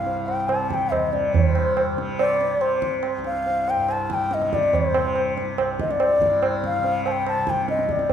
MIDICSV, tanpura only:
0, 0, Header, 1, 2, 480
1, 0, Start_track
1, 0, Tempo, 422833
1, 1529, Time_signature, 4, 2, 24, 8
1, 9228, End_track
2, 0, Start_track
2, 0, Title_t, "Tanpura"
2, 0, Program_c, 0, 104
2, 0, Note_on_c, 0, 36, 56
2, 0, Note_on_c, 0, 43, 49
2, 0, Note_on_c, 0, 48, 59
2, 539, Note_off_c, 0, 48, 0
2, 539, Note_on_c, 0, 48, 52
2, 1214, Note_off_c, 0, 48, 0
2, 1214, Note_on_c, 0, 48, 59
2, 1527, Note_off_c, 0, 43, 0
2, 1527, Note_on_c, 0, 43, 57
2, 2221, Note_off_c, 0, 48, 0
2, 2221, Note_on_c, 0, 48, 60
2, 2920, Note_off_c, 0, 48, 0
2, 2920, Note_on_c, 0, 48, 57
2, 3602, Note_off_c, 0, 36, 0
2, 3606, Note_on_c, 0, 36, 61
2, 4280, Note_off_c, 0, 43, 0
2, 4280, Note_on_c, 0, 43, 58
2, 4970, Note_off_c, 0, 48, 0
2, 4970, Note_on_c, 0, 48, 64
2, 5645, Note_off_c, 0, 48, 0
2, 5645, Note_on_c, 0, 48, 60
2, 6325, Note_off_c, 0, 36, 0
2, 6329, Note_on_c, 0, 36, 64
2, 7016, Note_off_c, 0, 43, 0
2, 7021, Note_on_c, 0, 43, 70
2, 7695, Note_off_c, 0, 48, 0
2, 7695, Note_on_c, 0, 48, 67
2, 8371, Note_off_c, 0, 48, 0
2, 8371, Note_on_c, 0, 48, 52
2, 9033, Note_off_c, 0, 36, 0
2, 9037, Note_on_c, 0, 36, 54
2, 9228, Note_off_c, 0, 36, 0
2, 9228, Note_off_c, 0, 43, 0
2, 9228, Note_off_c, 0, 48, 0
2, 9228, End_track
0, 0, End_of_file